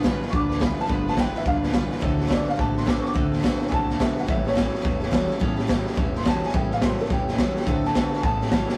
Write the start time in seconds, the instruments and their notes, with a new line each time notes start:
Already playing: upright bass G1, upright piano F3 A3 B3
0.03 clean electric guitar G2 E3, steel-string acoustic guitar G3 D4 F4 B4, kick, snare, hi-hat pedal
0.21 steel-string acoustic guitar D4 F4 B4, snare
0.27 upright piano C#6, snare
0.32 upright bass D2, clean electric guitar G2 D3, steel-string acoustic guitar G3 D4 F4 B4, upright piano D6, kick, snare
0.49 steel-string acoustic guitar D4 F4 B4, snare
0.60 clean electric guitar G2 E3, upright piano F3 A3 B3 B5, steel-string acoustic guitar G3 D4 F4 B4, kick, snare, hi-hat pedal
0.77 steel-string acoustic guitar D4 F4 B4, snare
0.81 upright piano A5, snare
0.87 upright bass G1, clean electric guitar G2 D3, upright piano F3 A3 B3, steel-string acoustic guitar G3 D4 F4 B4, kick, snare
0.92 upright piano B5
1.05 steel-string acoustic guitar D4 F4 B4, upright piano A5, snare
1.12 steel-string acoustic guitar G3, snare
1.17 clean electric guitar G2 E3, steel-string acoustic guitar D4 F4 B4, upright piano G5, kick, snare, hi-hat pedal
1.34 steel-string acoustic guitar D4 F4 B4, upright piano E5, snare
1.41 steel-string acoustic guitar G3, snare
1.45 upright bass D2, clean electric guitar G2 D3, steel-string acoustic guitar D4 F4 B4, upright piano F5, kick, snare
1.62 steel-string acoustic guitar D4 F4 B4, snare
1.68 snare
1.73 clean electric guitar G2 E3, steel-string acoustic guitar G3 D4 F4 B4, kick, snare, hi-hat pedal
1.91 steel-string acoustic guitar D4 F4 B4, snare
1.97 steel-string acoustic guitar D3 A3 C4, upright piano E3, snare
2.02 upright bass D2, clean electric guitar D3 A3, upright piano F#3 C4, steel-string acoustic guitar F#4 A4, kick, snare
2.17 steel-string acoustic guitar C4 F#4 A4, snare
2.26 steel-string acoustic guitar D3 A3 C4 F#4 A4, upright piano C#5, snare
2.30 clean electric guitar D3 B3, upright piano D5, kick, snare, hi-hat pedal
2.45 steel-string acoustic guitar C4 F#4 A4, snare
2.50 upright piano F5
2.54 clean electric guitar D3, steel-string acoustic guitar A3 C4 F#4, snare
2.58 upright bass A1, clean electric guitar A3, steel-string acoustic guitar A4, upright piano A5, kick, snare
2.75 steel-string acoustic guitar C4 F#4 A4, upright piano C6, snare
2.85 steel-string acoustic guitar D3 A3 C4 F#4 A4, clean electric guitar D3 B3, upright piano D6, kick, snare, hi-hat pedal
3.03 steel-string acoustic guitar C4 F#4 A4, upright piano D6, snare
3.13 upright bass D2, steel-string acoustic guitar D3 A3 C4 F#4 A4, clean electric guitar D3 A3, kick, snare
3.32 steel-string acoustic guitar C4 F#4 A4, snare
3.39 steel-string acoustic guitar D3, snare
3.43 clean electric guitar D3 B3, steel-string acoustic guitar A3 C4 F#4 A4, kick, snare, hi-hat pedal
3.60 upright piano E3 F#3 C4, steel-string acoustic guitar C4 F#4 A4, snare
3.67 steel-string acoustic guitar A3, upright piano G#5, snare
3.71 upright bass C2, clean electric guitar D3 A3, steel-string acoustic guitar C4 F#4 A4, upright piano A5, kick, snare
3.88 steel-string acoustic guitar C4 F#4 A4, snare
3.99 upright bass B1, steel-string acoustic guitar D3 A3 C4 F#4 A4, clean electric guitar D3 B3, upright piano E5, kick, snare, hi-hat pedal
4.16 steel-string acoustic guitar C4 F#4 A4, upright piano F#5, snare
4.23 steel-string acoustic guitar A2, snare
4.27 upright bass A1, clean electric guitar A2 E3, steel-string acoustic guitar E3 G3 C#4 G4 A4, upright piano E5, kick, snare
4.44 steel-string acoustic guitar G3 C#4 G4 A4, upright piano C#5, snare
4.52 steel-string acoustic guitar A2 E3 G3 C#4, snare
4.56 clean electric guitar A2 F#3, steel-string acoustic guitar G4 A4, kick, snare, hi-hat pedal
4.72 upright piano C#3 B3, steel-string acoustic guitar G3 C#4 G4 A4, snare
4.80 steel-string acoustic guitar G3 C#4 G4, snare
4.84 upright bass E1, clean electric guitar A2 E3, steel-string acoustic guitar A4, kick, snare
5.00 steel-string acoustic guitar G3 C#4 G4 A4, snare
5.10 steel-string acoustic guitar A2 E3 G3 C#4 G4 A4, clean electric guitar A2 F#3, upright piano C#3 G3 B3, kick, snare, hi-hat pedal
5.28 steel-string acoustic guitar G3 C#4 G4 A4, snare
5.39 upright bass A1, steel-string acoustic guitar A2 E3 G3 C#4 G4 A4, clean electric guitar A2 E3, upright piano C#3 B3, kick, snare
5.57 steel-string acoustic guitar G3 C#4 G4 A4, snare
5.67 steel-string acoustic guitar A2 E3 G3 C#4 G4 A4, clean electric guitar A2 F#3, kick, snare, hi-hat pedal
5.86 steel-string acoustic guitar G3 C#4 G4 A4, snare
5.92 steel-string acoustic guitar G3, snare
5.97 upright bass E1, clean electric guitar A2 E3, steel-string acoustic guitar C#4 G4 A4, kick, snare
6.14 steel-string acoustic guitar G3 C#4 G4 A4, upright piano C6, snare
6.21 steel-string acoustic guitar A2, snare
6.25 clean electric guitar A2 F#3, steel-string acoustic guitar E3 G3 C#4 G4 A4, upright piano A5, kick, snare, hi-hat pedal
6.42 steel-string acoustic guitar G3 C#4 G4 A4, snare
6.46 upright piano G#5, snare
6.52 upright bass A1, steel-string acoustic guitar A2 E3 G3 C#4 G4 A4, clean electric guitar A2 E3, upright piano C#3 B3, kick, snare
6.56 upright piano G5
6.71 steel-string acoustic guitar G3 C#4 G4 A4, upright piano F5, snare
6.82 steel-string acoustic guitar A2 E3 G3 C#4 G4 A4, clean electric guitar A2 F#3, upright piano C5, kick, snare, hi-hat pedal
6.99 steel-string acoustic guitar G3 C#4 G4 A4, upright piano A4, snare
7.05 snare
7.10 upright bass E1, clean electric guitar A2 E3, steel-string acoustic guitar G3 C#4 G4 A4, upright piano G4, kick, snare
7.28 steel-string acoustic guitar G3 C#4 G4 A4, snare
7.33 snare
7.38 clean electric guitar A2 F#3, steel-string acoustic guitar A2 E3 G3 C#4 G4 A4, kick, snare, hi-hat pedal
7.56 steel-string acoustic guitar G3 C#4 G4 A4, snare
7.61 snare
7.66 upright bass D2, clean electric guitar D3 A3, steel-string acoustic guitar D3 A3 C4 F#4 A4, upright piano E3 F#3 C4, kick, snare
7.84 steel-string acoustic guitar C4 F#4 A4, upright piano A5, snare
7.94 steel-string acoustic guitar D3 A3 C4 F#4 A4, clean electric guitar D3 B3, kick, snare, hi-hat pedal
8.12 steel-string acoustic guitar C4 F#4 A4, snare
8.18 upright piano C#3 G#5, snare
8.22 upright bass A1, clean electric guitar A2 E3, steel-string acoustic guitar G3 C#4 G4 A4, upright piano B3 A5, kick, snare
8.41 steel-string acoustic guitar G3 C#4 G4 A4, snare
8.46 snare
8.51 clean electric guitar A2 F#3, steel-string acoustic guitar A2 E3 G3 C#4 G4 A4, kick, snare, hi-hat pedal
8.68 steel-string acoustic guitar G3 C#4 G4 A4, snare